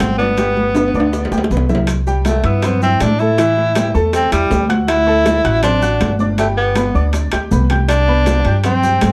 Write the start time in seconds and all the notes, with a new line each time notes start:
Already playing: C4 F#4 F#5
0.00 G1, high bongo, low bongo, high conga, high timbale, maracas
0.18 B3 D4 D5, high conga, maracas
0.37 G3 G4, high bongo, high conga, high timbale, maracas
0.57 high bongo, high conga
0.75 B3 B4, high bongo, high timbale, maracas
0.88 high timbale
0.94 D2 D4 D5, high bongo, maracas
1.00 high timbale
1.13 high bongo, maracas
1.25 low timbale
1.32 D2 G4 G5, high bongo, maracas
1.38 low timbale
1.44 high bongo
1.50 C2 B3 B4, low conga, maracas
1.57 low bongo
1.69 E4 E5, low bongo, low conga, maracas
1.75 low timbale
1.87 high bongo, high conga, high timbale, maracas
2.07 G3 G4 G5, high conga, maracas
2.25 A3, high bongo, high conga, high timbale, maracas
2.44 G2 B3 E4 E5 E6, high conga, high timbale, maracas
2.62 C4 C5 C6, high bongo, high conga, low conga, high timbale, maracas
2.82 C4 E4 E5 E6, high conga, low conga, maracas
3.00 A2 D4, high bongo, low bongo, high conga, high timbale, maracas
3.19 A3 E4 A4 A5, maracas
3.38 E3 E4 E5, high bongo, high conga, high timbale, maracas
3.57 high bongo, high conga
3.75 G3 G4 G5, high bongo, high conga, high timbale, maracas
3.94 E2 A3 A4 A5, high bongo, high conga, maracas
4.13 C4, high bongo, high conga, high timbale, maracas
4.31 E2 G3 E4 E5 E6, high bongo, high conga, high timbale, maracas
4.50 D2 G3 G4 G5, high bongo, low bongo, high conga, low timbale, maracas
4.69 F#4 F#5 F#6, high conga, high timbale, maracas
4.88 E4, high bongo, high conga, high timbale, maracas
5.07 A3 A4 A5, high conga
5.26 high bongo, high conga, high timbale, maracas
5.44 A1 F#4 F#5 F#6, high timbale, maracas
5.63 C4 D4 C5 C6, high bongo, high conga, low conga, high timbale, maracas
5.82 F#4 F#5 F#6, high conga, maracas
6.01 G1, high bongo, low bongo, high conga, high timbale, maracas
6.19 D4 D5 D6, high conga, maracas
6.38 G3 A3 G4 G5, high bongo, high conga, high timbale, maracas
6.57 B3, high bongo, high conga
6.75 B3 B4 B5, high bongo, high conga, high timbale, maracas
6.95 D2 D4 D5 D6, high bongo, high conga, maracas
7.13 high bongo, high conga, high timbale, maracas
7.32 D2 G4 G5 G6, high bongo, high conga, high timbale, maracas
7.51 C2 B3 B4 B5, low bongo, high conga, maracas
7.70 G4 G5 G6, low bongo, high timbale, maracas
7.89 D4, high bongo, high conga, high timbale, maracas
8.07 B3 B4 B5, high conga
8.26 high bongo, high conga, high timbale, maracas
8.45 G2 G4 G5 G6, high conga, high timbale, maracas
8.64 C4 C5 C6, high bongo, high conga, low conga, high timbale, maracas
8.83 G4 G5 G6, high conga, low conga, maracas
9.01 G2, high bongo, low bongo, high conga, high timbale, maracas